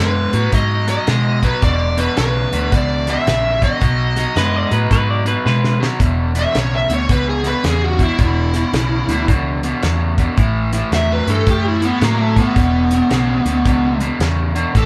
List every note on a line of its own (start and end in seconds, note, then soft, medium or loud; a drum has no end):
0.00 0.26 F#2 medium
0.00 0.30 B2 medium
0.00 0.30 G#3 medium
0.00 0.50 B4 medium
0.33 0.49 A2 medium
0.33 0.51 B2 medium
0.33 0.51 F#3 medium
0.33 closed hi-hat medium
0.52 0.97 G#2 medium
0.52 0.84 B2 medium
0.52 0.85 F#3 medium
0.52 0.88 D#5 loud
0.52 kick loud
0.52 closed hi-hat medium
0.87 1.05 B2 medium
0.87 1.06 F#3 medium
0.87 1.45 D#5 medium
0.87 closed hi-hat medium
1.07 1.39 B2 medium
1.07 1.52 B2 medium
1.07 1.39 G#3 medium
1.07 snare loud
1.07 closed hi-hat medium
1.43 1.61 B2 medium
1.43 1.61 F#3 medium
1.43 1.64 B4 medium
1.43 kick medium
1.43 closed hi-hat medium
1.62 2.07 E1 medium
1.62 1.94 E2 medium
1.62 1.94 B2 medium
1.62 1.99 D5 medium
1.62 kick loud
1.62 snare soft
1.62 closed hi-hat medium
1.97 2.15 E2 medium
1.97 2.15 B2 medium
1.97 2.17 B4 medium
1.97 closed hi-hat medium
2.17 2.46 B1 medium
2.17 2.49 E2 medium
2.17 2.49 C#3 medium
2.17 2.74 B4 medium
2.17 snare loud
2.17 closed hi-hat medium
2.52 2.69 D2 medium
2.52 2.70 E2 medium
2.52 2.70 B2 medium
2.52 closed hi-hat medium
2.72 3.16 C#2 medium
2.72 3.03 E2 medium
2.72 3.04 B2 medium
2.72 3.06 D5 loud
2.72 kick loud
2.72 snare soft
2.72 closed hi-hat medium
3.07 3.25 E2 medium
3.07 3.25 B2 medium
3.07 3.63 E5 medium
3.07 snare soft
3.07 closed hi-hat medium
3.27 3.71 A#1 medium
3.27 3.58 E2 medium
3.27 3.59 C#3 medium
3.27 snare loud
3.27 closed hi-hat medium
3.62 3.79 E2 medium
3.62 3.80 B2 medium
3.62 5.43 D#5 medium
3.62 kick medium
3.62 closed hi-hat medium
3.81 4.25 B1 medium
3.81 4.13 B2 medium
3.81 4.13 F#3 medium
3.81 kick loud
3.81 closed hi-hat medium
4.16 4.34 B2 medium
4.16 4.34 F#3 medium
4.16 snare soft
4.16 closed hi-hat medium
4.36 4.64 F#2 medium
4.36 4.68 B2 medium
4.36 4.68 G#3 medium
4.36 4.56 B4 medium
4.36 snare loud
4.36 closed hi-hat medium
4.56 4.73 D5 medium
4.71 4.87 A2 medium
4.71 4.89 B2 medium
4.71 4.89 F#3 medium
4.71 4.90 B4 medium
4.71 closed hi-hat medium
4.90 5.35 G#2 medium
4.90 5.22 B2 medium
4.90 5.22 F#3 medium
4.90 5.09 B4 medium
4.90 kick loud
4.90 snare soft
4.90 closed hi-hat medium
5.10 5.27 D5 medium
5.26 5.43 B2 medium
5.26 5.44 F#3 medium
5.26 5.45 B4 medium
5.26 closed hi-hat medium
5.45 5.77 B2 medium
5.45 5.90 B2 medium
5.45 5.77 G#3 medium
5.45 5.80 B4 medium
5.45 snare medium
5.64 snare medium
5.80 5.98 B2 medium
5.80 5.98 F#3 medium
5.80 snare medium
6.00 6.44 E1 medium
6.00 6.31 E2 medium
6.00 6.32 B2 medium
6.00 kick loud
6.00 closed hi-hat medium
6.35 6.53 E2 medium
6.35 6.53 B2 medium
6.35 6.56 E5 medium
6.35 closed hi-hat medium
6.54 6.83 B1 medium
6.54 6.86 E2 medium
6.54 6.87 C#3 medium
6.54 6.74 C#5 medium
6.54 snare loud
6.54 closed hi-hat medium
6.76 6.92 E5 medium
6.89 7.05 D2 medium
6.89 7.08 E2 medium
6.89 7.08 B2 medium
6.89 closed hi-hat medium
6.94 7.10 C#5 medium
7.09 7.54 C#2 medium
7.09 7.41 E2 medium
7.09 7.41 B2 medium
7.09 7.28 B4 medium
7.09 kick loud
7.09 closed hi-hat medium
7.29 7.46 G#4 medium
7.44 7.62 E2 medium
7.44 7.62 B2 medium
7.44 7.65 B4 medium
7.44 snare soft
7.44 closed hi-hat medium
7.64 7.96 E2 medium
7.64 8.08 E2 medium
7.64 7.96 C#3 medium
7.64 7.84 G#4 medium
7.64 snare loud
7.64 closed hi-hat medium
7.84 8.02 F#4 medium
7.99 8.17 E2 medium
7.99 8.17 B2 medium
7.99 8.19 E4 medium
7.99 kick medium
7.99 closed hi-hat medium
8.18 8.63 E1 medium
8.18 8.50 E2 medium
8.18 8.51 B2 medium
8.18 9.26 E4 medium
8.18 kick loud
8.18 closed hi-hat medium
8.53 8.71 E2 medium
8.53 8.72 B2 medium
8.53 snare soft
8.53 closed hi-hat medium
8.73 9.01 B1 medium
8.73 9.05 E2 medium
8.73 9.05 C#3 medium
8.73 snare medium
8.73 closed hi-hat medium
9.08 9.24 D2 medium
9.08 9.26 E2 medium
9.08 9.27 B2 medium
9.08 closed hi-hat medium
9.28 9.72 C#2 medium
9.28 9.60 E2 medium
9.28 9.60 B2 medium
9.28 kick loud
9.28 closed hi-hat medium
9.63 9.81 E2 medium
9.63 9.82 B2 medium
9.63 closed hi-hat medium
9.83 10.14 E2 medium
9.83 10.27 E2 medium
9.83 10.15 C#3 medium
9.83 snare loud
9.83 closed hi-hat medium
10.18 10.36 E2 medium
10.18 10.36 B2 medium
10.18 kick medium
10.18 closed hi-hat medium
10.37 10.82 A1 medium
10.37 10.69 A2 medium
10.37 10.70 E3 medium
10.37 kick loud
10.37 closed hi-hat medium
10.73 10.90 A2 medium
10.73 10.91 E3 medium
10.73 snare soft
10.73 closed hi-hat medium
10.92 11.20 E2 medium
10.92 11.24 A2 medium
10.92 11.24 F#3 medium
10.92 11.11 E5 medium
10.92 snare loud
10.92 closed hi-hat medium
11.13 11.29 B4 medium
11.27 11.43 G2 medium
11.27 11.45 A2 medium
11.27 11.46 E3 loud
11.27 closed hi-hat medium
11.31 11.48 A4 medium
11.47 11.91 F#2 medium
11.47 11.79 A2 medium
11.47 11.79 E3 medium
11.47 11.66 G4 medium
11.47 kick loud
11.47 snare soft
11.47 closed hi-hat medium
11.68 11.84 E4 medium
11.82 12.00 A2 medium
11.82 12.00 E3 medium
11.82 12.02 B3 loud
11.82 closed hi-hat medium
12.01 12.45 A2 medium
12.01 12.33 A2 medium
12.01 12.33 F#3 medium
12.01 12.21 A#3 medium
12.01 snare loud
12.01 closed hi-hat medium
12.21 12.38 A3 loud
12.36 12.54 A2 medium
12.36 12.55 E3 medium
12.36 13.99 B3 loud
12.36 kick medium
12.36 closed hi-hat medium
12.56 13.00 E1 medium
12.56 12.88 E2 medium
12.56 12.88 B2 medium
12.56 kick loud
12.56 closed hi-hat medium
12.91 13.09 E2 medium
12.91 13.09 B2 medium
12.91 closed hi-hat medium
13.11 13.39 B1 medium
13.11 13.43 E2 medium
13.11 13.43 C#3 medium
13.11 snare medium
13.11 closed hi-hat medium
13.45 13.61 D2 medium
13.45 13.64 E2 medium
13.45 13.64 B2 medium
13.45 closed hi-hat medium
13.65 14.10 C#2 medium
13.65 13.97 E2 medium
13.65 13.97 B2 medium
13.65 kick loud
13.65 closed hi-hat medium
14.00 14.19 E2 medium
14.00 14.19 B2 medium
14.00 closed hi-hat medium
14.19 14.64 E2 medium
14.19 14.52 E2 medium
14.19 14.52 C#3 medium
14.19 snare loud
14.19 closed hi-hat medium
14.55 14.73 E2 medium
14.55 14.73 B2 medium
14.55 closed hi-hat medium
14.75 14.86 A1 medium
14.75 14.86 A2 medium
14.75 14.86 E3 medium
14.75 14.86 A4 loud
14.75 kick loud
14.75 closed hi-hat medium